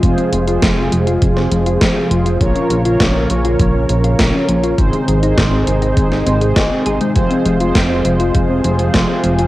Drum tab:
HH |xxxxx-xxx-xxx-xx|xxxxx-xxx-xxx-xx|xxxxx-xxx-xxx-xx|xxxxx-xxx-xxx-xx|
SD |----o----o--o---|----o-------o---|----o----o--o---|----o-------o---|
BD |o---o---o---o---|o---o---o---o---|o---o---o---o---|o---o---o---o---|